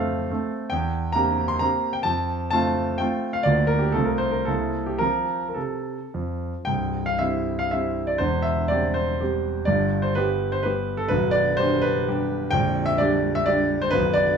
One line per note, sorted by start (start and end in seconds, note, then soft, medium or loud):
0.00 0.32 F2 soft
0.00 0.26 A3 soft
0.00 0.26 C4 soft
0.00 0.26 A4 soft
0.00 0.31 C5 medium
0.00 0.32 E5 medium
0.00 0.50 F5 medium
0.31 0.69 A3 soft
0.31 0.69 C4 soft
0.31 0.69 A4 soft
0.70 1.14 E2 soft
0.70 1.14 G5 medium
1.12 1.56 A#3 soft
1.12 1.56 C4 soft
1.12 1.57 G4 soft
1.12 1.48 A#5 medium
1.48 1.60 C6 medium
1.59 2.01 A#3 soft
1.59 2.01 C4 soft
1.59 2.02 G4 soft
1.59 1.93 A#5 medium
1.93 2.04 G5 medium
2.03 2.51 F2 soft
2.03 2.49 A5 medium
2.51 2.96 A3 soft
2.51 2.96 C4 soft
2.51 2.96 F4 soft
2.51 2.98 A5 medium
2.98 3.41 A3 soft
2.98 3.42 C4 soft
2.98 3.42 F4 soft
2.98 3.33 G5 medium
3.33 3.45 F5 medium
3.43 3.93 D2 medium
3.43 3.91 A#3 soft
3.43 3.91 F4 soft
3.43 3.68 D5 medium
3.67 3.80 A#4 medium
3.79 3.93 G4 medium
3.92 4.46 C2 soft
3.92 4.44 A3 soft
3.92 4.44 C4 soft
3.92 4.44 F4 soft
3.92 4.06 A4 medium
4.05 4.19 A#4 medium
4.18 4.33 C5 medium
4.31 4.46 A#4 soft
4.45 4.98 C2 soft
4.45 4.96 A#3 soft
4.45 4.96 C4 soft
4.45 4.97 E4 soft
4.45 4.85 A4 medium
4.86 5.00 G4 soft
4.99 5.40 F3 soft
4.99 5.46 C4 soft
4.99 5.46 F4 soft
4.99 5.47 A#4 medium
5.49 5.57 A#4 soft
5.54 5.97 C3 soft
5.54 6.13 A4 soft
6.14 6.52 F2 soft
6.65 8.16 C1 soft
6.65 8.16 C2 soft
6.65 7.06 G5 medium
7.06 7.20 F5 medium
7.19 7.68 G3 soft
7.19 7.68 C4 soft
7.19 7.69 E4 soft
7.19 7.59 E5 medium
7.59 7.72 F5 medium
7.71 8.17 G3 soft
7.71 8.17 C4 soft
7.71 8.17 E4 soft
7.71 8.08 E5 medium
8.07 8.19 D5 medium
8.18 9.64 E1 soft
8.18 9.64 E2 soft
8.18 8.43 C5 medium
8.42 8.69 E5 medium
8.68 9.17 G3 soft
8.68 9.17 C4 soft
8.68 9.17 G4 soft
8.68 8.95 D5 medium
8.94 9.67 C5 medium
9.20 9.63 G3 soft
9.20 9.64 C4 soft
9.20 9.64 G4 soft
9.65 11.07 G1 soft
9.65 11.07 G2 soft
9.65 10.03 D5 medium
10.02 10.16 C5 medium
10.15 10.62 G3 soft
10.15 10.62 B3 soft
10.15 10.62 G4 soft
10.15 10.53 B4 medium
10.52 10.65 C5 medium
10.63 11.07 G3 soft
10.63 11.07 B3 soft
10.63 11.07 G4 soft
10.63 10.98 B4 medium
10.97 11.10 A4 medium
11.08 12.48 B0 soft
11.08 12.48 B1 medium
11.08 11.33 B4 medium
11.31 11.58 D5 medium
11.57 12.03 G3 soft
11.57 12.03 D4 soft
11.57 12.04 G4 soft
11.57 11.82 C5 medium
11.82 12.51 B4 medium
12.08 12.49 G3 soft
12.08 12.49 D4 soft
12.08 12.49 G4 soft
12.51 13.90 A#0 soft
12.51 13.90 A#1 medium
12.51 12.87 G5 medium
12.86 12.99 E5 medium
12.98 13.44 G3 soft
12.98 13.45 D4 soft
12.98 13.45 G4 soft
12.98 13.36 D5 medium
13.35 13.48 E5 medium
13.46 13.89 G3 soft
13.46 13.90 D4 soft
13.46 13.90 G4 soft
13.46 13.81 D5 medium
13.82 13.93 C5 medium
13.91 14.37 B0 medium
13.91 14.37 B1 medium
13.91 14.15 B4 medium
14.14 14.37 D5 medium